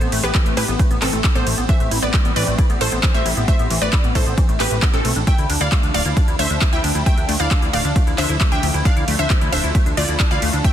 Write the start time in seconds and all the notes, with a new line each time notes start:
Already playing: E3 A3 C4 A4 C5
0.01 A1 B3, closed hi-hat
0.12 A1 A3, open hi-hat, ride
0.23 A1 B3 G4 B4, closed hi-hat
0.35 E3, kick, clap, closed hi-hat, ride
0.46 A1 A3, closed hi-hat
0.57 A2 E4 G4 B4, open hi-hat, ride
0.68 A1 B3, closed hi-hat
0.79 A3, kick, closed hi-hat, ride
0.91 A1 B3, closed hi-hat
1.02 A1 E3 C4 A4, clap, open hi-hat, ride
1.13 A1 A3, closed hi-hat
1.24 E4, kick, clap, closed hi-hat, ride
1.35 A1 B3 A4 C5, closed hi-hat
1.47 A1 A3, open hi-hat, ride
1.58 A1 B3, closed hi-hat
1.69 E3 G3 C5 E5, kick, closed hi-hat, ride
1.80 A1 A3, closed hi-hat
1.91 A1 E4, open hi-hat, ride
2.02 A1 B3 B4 D5
2.14 A3, kick, clap, closed hi-hat, ride
2.25 A1 B3, closed hi-hat
2.36 A2 E3 B4 D5, open hi-hat, ride
2.47 A1 A3, closed hi-hat
2.58 E4, kick, closed hi-hat, ride
2.70 A1 B3, closed hi-hat
2.81 A1 A3 A4 C5, open hi-hat, ride
2.92 A1 B3, closed hi-hat
3.03 E3, kick, clap, closed hi-hat, ride
3.14 A1 A3 C5 E5, closed hi-hat
3.26 A1 E4, open hi-hat, ride
3.37 A1 B3, closed hi-hat
3.48 A3 C5 E5, kick, closed hi-hat, ride
3.59 A1 B3, closed hi-hat
3.70 A1 E3, open hi-hat, ride
3.82 A1 A3 B4 D5, closed hi-hat
3.93 E4, kick, clap, closed hi-hat, ride
4.04 A1 B3, closed hi-hat
4.15 A2 A3 A4 C5, kick, open hi-hat, ride
4.26 A1 B3, closed hi-hat
4.38 E3, kick, closed hi-hat, ride
4.49 A1 A3, closed hi-hat
4.60 A1 A3 G4 B4, clap, open hi-hat, ride
4.71 A1 A3, closed hi-hat
4.82 B3, kick, clap, closed hi-hat, ride
4.93 A1 C4 D4 A4, closed hi-hat
5.05 B1 A3, open hi-hat, ride
5.16 A1 D4, closed hi-hat
5.27 F3 A3 D4 E5 G5, kick, closed hi-hat, ride
5.38 D2 E4, closed hi-hat
5.50 D2 D4, open hi-hat, ride
5.61 D2 E4 D5 F5, closed hi-hat
5.72 A3, kick, clap, closed hi-hat, ride
5.83 D2 D4, closed hi-hat
5.94 D1 A3 D5 F5, open hi-hat, ride
6.05 D2 E4, closed hi-hat
6.17 D4, kick, closed hi-hat, ride
6.28 D2 E4, closed hi-hat
6.39 D2 A3 C5 E5, open hi-hat, ride
6.50 D2 D4, closed hi-hat
6.61 A3, kick, clap, closed hi-hat, ride
6.73 D2 E4 E5 G5, closed hi-hat
6.84 D2 D4, open hi-hat, ride
6.95 D2 E4, closed hi-hat
7.06 A3 E5 G5, kick, closed hi-hat, ride
7.17 D2 D4, closed hi-hat
7.29 D2 A3, open hi-hat, ride
7.40 D2 E4 D5 F5, closed hi-hat
7.51 D4, kick, clap, closed hi-hat, ride
7.62 D2 E4, closed hi-hat
7.73 D1 A3 D5 F5, open hi-hat, ride
7.85 D2 D4, closed hi-hat
7.96 A3, kick, closed hi-hat, ride
8.07 D2 E4, closed hi-hat
8.18 D2 D4 C5 E5, clap, open hi-hat, ride
8.29 D2 E4, closed hi-hat
8.41 A3, kick, clap, closed hi-hat, ride
8.52 D2 D4 E5 G5, closed hi-hat
8.63 D2 A3, open hi-hat, ride
8.74 D2 E4, closed hi-hat
8.85 E3 D4 D5 F5, kick, closed hi-hat, ride
8.97 D2 E4, closed hi-hat
9.08 D2 A3, open hi-hat, ride
9.19 D2 D4 C5 E5, closed hi-hat
9.30 A3, kick, clap, closed hi-hat, ride
9.41 D2 E4, closed hi-hat
9.52 D1 D4 C5 E5, open hi-hat, ride
9.64 D2 E4, closed hi-hat
9.75 A3, kick, closed hi-hat, ride
9.86 D2 D4, closed hi-hat
9.97 D2 A3 F4 D5, open hi-hat, ride
10.08 D2 E4, closed hi-hat
10.20 D4, kick, clap, closed hi-hat, ride
10.31 D2 E4 D5 F5, closed hi-hat
10.42 D2 A3, open hi-hat, ride
10.53 D2 D4, closed hi-hat
10.64 A3 E5 G5, kick, closed hi-hat, ride